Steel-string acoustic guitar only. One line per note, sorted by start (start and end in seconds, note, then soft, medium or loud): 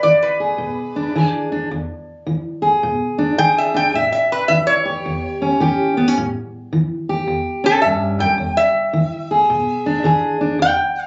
0.00 0.55 E3 medium
0.00 0.40 G#4 medium
0.40 1.15 G#4 medium
0.58 1.10 B2 medium
0.96 1.51 D4 medium
1.15 1.66 E3 medium
1.15 1.68 G#4 medium
1.52 1.68 D4 medium
1.71 2.22 E2 medium
2.27 2.78 E3 medium
2.62 3.37 G#4 medium
2.83 3.34 B2 medium
3.18 3.73 D4 medium
3.38 3.90 E3 medium
3.38 3.91 G#4 medium
3.74 3.91 D4 medium
3.94 4.45 A2 medium
4.50 5.01 E3 medium
4.85 5.60 G4 medium
5.06 5.57 E2 medium
5.42 5.97 C#4 medium
5.60 6.12 E3 medium
5.60 6.14 G4 medium
5.97 6.08 B3 medium
6.08 6.17 C#4 medium
6.17 6.68 A2 medium
6.73 7.24 E3 medium
7.09 8.37 G4 medium
7.27 7.79 E2 medium
7.64 8.36 C#4 medium
7.85 8.19 G2 medium
8.19 8.37 F#2 medium
8.38 8.89 E2 medium
8.93 9.45 E3 medium
9.31 10.04 G#4 medium
9.50 10.01 B2 medium
9.86 10.40 D4 medium
10.04 10.56 E3 medium
10.04 10.58 G#4 medium
10.41 10.58 D4 medium
10.59 11.07 E2 medium